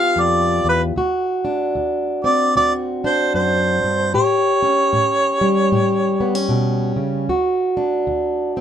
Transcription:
Already playing: steel-string acoustic guitar G2 B3 F4 G4, harmonica F5
0.16 steel-string acoustic guitar F2
0.20 harmonica D5
0.65 steel-string acoustic guitar E2
0.69 harmonica B4
0.96 steel-string acoustic guitar D2 F#4
1.45 steel-string acoustic guitar D4
1.75 steel-string acoustic guitar D2
2.24 steel-string acoustic guitar C4, harmonica D5
2.56 steel-string acoustic guitar D2 F#4, harmonica D5
3.04 steel-string acoustic guitar D4, harmonica C5
3.34 steel-string acoustic guitar F#2, harmonica C5
3.84 steel-string acoustic guitar G2
4.14 steel-string acoustic guitar A2 G4, harmonica C#5
4.63 steel-string acoustic guitar C#4
4.93 steel-string acoustic guitar A2
5.41 steel-string acoustic guitar G3
5.72 steel-string acoustic guitar A2 G4
6.20 steel-string acoustic guitar B3
6.35 steel-string acoustic guitar C#4
6.49 steel-string acoustic guitar B2
6.96 steel-string acoustic guitar C#3
7.29 steel-string acoustic guitar D2 F#4
7.77 steel-string acoustic guitar D4
8.07 steel-string acoustic guitar D2
8.57 steel-string acoustic guitar C4

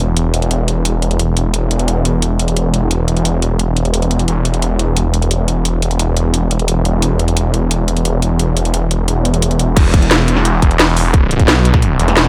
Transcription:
Already playing: detuned saw bass E1
0.17 closed hi-hat
0.34 closed hi-hat
0.42 closed hi-hat
0.51 closed hi-hat
0.68 closed hi-hat
0.85 closed hi-hat
1.02 closed hi-hat
1.11 closed hi-hat
1.19 closed hi-hat
1.37 closed hi-hat
1.54 closed hi-hat
1.71 closed hi-hat
1.79 closed hi-hat
1.88 closed hi-hat
2.05 closed hi-hat
2.22 closed hi-hat
2.39 closed hi-hat
2.48 closed hi-hat
2.57 closed hi-hat
2.74 closed hi-hat
2.91 closed hi-hat
3.08 closed hi-hat
3.17 closed hi-hat
3.25 closed hi-hat
3.42 closed hi-hat
3.59 closed hi-hat
3.77 closed hi-hat
3.85 closed hi-hat
3.94 closed hi-hat
4.02 closed hi-hat
4.11 closed hi-hat
4.19 closed hi-hat
4.28 detuned saw bass E1, closed hi-hat
4.45 closed hi-hat
4.54 closed hi-hat
4.62 closed hi-hat
4.79 closed hi-hat
4.97 closed hi-hat
5.14 closed hi-hat
5.22 closed hi-hat
5.31 closed hi-hat
5.48 closed hi-hat
5.65 closed hi-hat
5.82 closed hi-hat
5.91 closed hi-hat
5.99 closed hi-hat
6.17 closed hi-hat
6.34 closed hi-hat
6.51 closed hi-hat
6.59 closed hi-hat
6.68 closed hi-hat
6.85 closed hi-hat
7.02 closed hi-hat
7.19 closed hi-hat
7.28 closed hi-hat
7.37 closed hi-hat
7.54 closed hi-hat
7.71 closed hi-hat
7.88 closed hi-hat
7.97 closed hi-hat
8.05 closed hi-hat
8.22 closed hi-hat
8.39 closed hi-hat
8.57 closed hi-hat
8.65 closed hi-hat
8.74 closed hi-hat
8.91 closed hi-hat
9.08 closed hi-hat
9.25 closed hi-hat
9.34 closed hi-hat
9.42 closed hi-hat
9.51 closed hi-hat
9.59 closed hi-hat
9.77 detuned saw bass E1, kick, closed hi-hat, crash
9.94 kick, closed hi-hat
10.02 closed hi-hat
10.11 snare, closed hi-hat
10.28 closed hi-hat
10.37 snare
10.45 closed hi-hat
10.62 detuned saw bass E1, kick, closed hi-hat
10.71 closed hi-hat
10.79 snare, closed hi-hat
10.97 open hi-hat
11.14 kick, closed hi-hat
11.31 closed hi-hat
11.39 kick, closed hi-hat
11.48 detuned saw bass B1, snare, closed hi-hat
11.65 closed hi-hat
11.74 kick, snare
11.82 closed hi-hat
11.99 detuned saw bass E1, closed hi-hat
12.08 snare, closed hi-hat
12.17 detuned saw bass E1, snare, closed hi-hat
12.25 snare

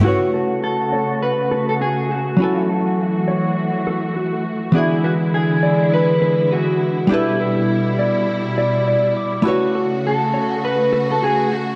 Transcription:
0.01 hollow-body jazz guitar A3 E4 F#4, clean electric guitar F#4
0.05 string section C#3 A3 F#4, hollow-body jazz guitar B4 C#5
0.34 clean electric guitar A4
0.64 clean electric guitar A4
0.93 clean electric guitar C#5
1.23 clean electric guitar B4
1.51 clean electric guitar A4
1.69 clean electric guitar A4
1.81 clean electric guitar F#4 G#4
2.11 clean electric guitar F#4
2.37 string section E3 F#4, hollow-body jazz guitar F#3 C#4 E4, clean electric guitar F#4
2.42 hollow-body jazz guitar A4 G#5
2.69 clean electric guitar A4
3.28 clean electric guitar C#5
3.87 clean electric guitar A4
4.16 clean electric guitar F#4
4.72 string section D3 G#3 E4, hollow-body jazz guitar E3 B3 D4, clean electric guitar E4 G#4
4.76 hollow-body jazz guitar F#4 G#4
5.04 clean electric guitar F#4 B4
5.34 clean electric guitar G#4
5.63 clean electric guitar D5
5.94 clean electric guitar B4
6.22 clean electric guitar B4
6.51 clean electric guitar F#4 G#4
7.07 string section B2 G3 E4, hollow-body jazz guitar G3 D4 E4, clean electric guitar G4
7.12 clean electric guitar E4, hollow-body jazz guitar A4 B4
7.40 clean electric guitar B4
7.99 clean electric guitar D5
8.58 clean electric guitar D5
8.88 clean electric guitar D5
9.17 clean electric guitar D6
9.42 string section C#3 A3 F#4, hollow-body jazz guitar A3 E4 F#4
9.46 clean electric guitar F#4, hollow-body jazz guitar B4 C#5
9.75 clean electric guitar A4
10.07 clean electric guitar A4
10.34 clean electric guitar C#5
10.65 clean electric guitar B4
10.93 clean electric guitar A4
11.11 clean electric guitar A4
11.22 clean electric guitar F#4 G#4
11.52 clean electric guitar F#4

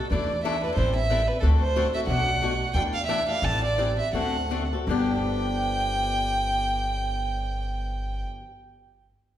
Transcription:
Already playing: violin A4
0.11 upright bass E2, steel-string acoustic guitar E3 A3 D4 E4 A4, violin D5
0.44 steel-string acoustic guitar E3 A3 D4 E4 A4, violin E5
0.63 steel-string acoustic guitar D4 E4 A4, violin B4
0.76 upright bass A1, steel-string acoustic guitar E3 G3 C4 E4 A4, violin C5
0.96 violin E5
1.10 steel-string acoustic guitar E3 G3 C4 E4 A4
1.28 violin B4
1.40 upright bass D2, steel-string acoustic guitar D3 A3 C4 F#4 A4, violin A4
1.60 violin C5
1.76 steel-string acoustic guitar D3 A3 C4 F#4 A4
1.94 steel-string acoustic guitar C4 F#4 A4, violin E5
2.07 upright bass B1, steel-string acoustic guitar B2 F#3 A3 D4 F#4, violin F#5
2.42 steel-string acoustic guitar B2 F#3 A3 D4 F#4
2.74 upright bass E2, steel-string acoustic guitar E3 A3 D4 E4 A4, violin G5
2.94 violin F5
3.06 steel-string acoustic guitar E3 A3 D4 E4 A4, violin E5
3.28 steel-string acoustic guitar D4 E4 A4, violin F5
3.42 upright bass A1, steel-string acoustic guitar E3 G3 C4 E4 A4, violin A5
3.65 violin D5
3.78 steel-string acoustic guitar E3 G3 C4 E4 A4
3.99 violin E5
4.13 upright bass D2, steel-string acoustic guitar D3 A3 C4 F#4 A4, violin F#5
4.50 steel-string acoustic guitar D3 A3 C4 F#4 A4
4.73 steel-string acoustic guitar C4 F#4 A4
4.87 upright bass G1, steel-string acoustic guitar G2 D3 F3 B3 D4, violin G5
4.91 steel-string acoustic guitar G4

